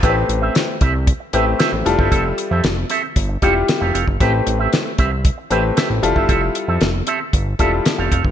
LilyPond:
<<
  \new Staff \with { instrumentName = "Clean electric guitar" } { \time 4/4 \key a \minor \tempo 4 = 115 <c' g' b' e''>16 r8 <c' g' b' e''>16 r8 <c' g' b' e''>16 r8. <c' g' b' e''>16 r16 <c' g' b' e''>16 r8 <c' g' a' e''>16 | <c' g' a' e''>16 r8 <c' g' a' e''>16 r8 <c' g' a' e''>16 r8. <c' g' a' e''>16 r8 <c' g' a' f''>16 <c' g' a' f''>16 r16 | <c' g' b' e''>16 r8 <c' g' b' e''>16 r8 <c' g' b' e''>16 r8. <c' g' b' e''>16 r16 <c' g' b' e''>16 r8 <c' g' a' e''>16 | <c' g' a' e''>16 r8 <c' g' a' e''>16 r8 <c' g' a' e''>16 r8. <c' g' a' e''>16 r8 <c' g' a' f''>16 <c' g' a' f''>16 r16 | }
  \new Staff \with { instrumentName = "Grand piano" } { \time 4/4 \key a \minor <a b c' g' b'>4. r4 <a c' g' b'>4 <g e' f' a'>8~ | <g e' f' a'>4 r4. <g e' f' g'>4 r8 | <a c' g' b'>4. r4 <a c' g' b'>4 <g e' f' a'>8~ | <g e' f' a'>4 r4. <g e' f' a'>4 r8 | }
  \new Staff \with { instrumentName = "Analog synth bass" } { \clef bass \time 4/4 \key a \minor a,,8 a,,8 r8 c,8. r16 a,,8 r16 a,,16 f,,16 g,,16 | f,,8 r16 f,16 f,,8 r8 g,,8 e,,8 r16 f,,16 f,,16 g,,16 | a,,8 a,,8 r8 c,8. r16 a,,8 r16 a,,16 f,,16 g,,16 | f,,8 r16 f,16 f,,8 r8 g,,8 e,,8 r16 f,,16 f,,16 g,,16 | }
  \new DrumStaff \with { instrumentName = "Drums" } \drummode { \time 4/4 <hh bd>8 hh8 <hh sn>8 <hh bd>8 <hh bd>8 hh8 <hh sn>8 hh16 bd16 | <hh bd>8 hh8 <hh sn>8 hh8 <hh bd>8 <hh bd>8 <hh sn>8 hh16 bd16 | <hh bd>8 hh8 <hh sn>8 <hh bd>8 <hh bd>8 hh8 <hh sn>8 hh16 bd16 | <hh bd>8 hh8 <hh sn>8 hh8 <hh bd>8 <hh bd>8 <hh sn>8 <hh bd>16 bd16 | }
>>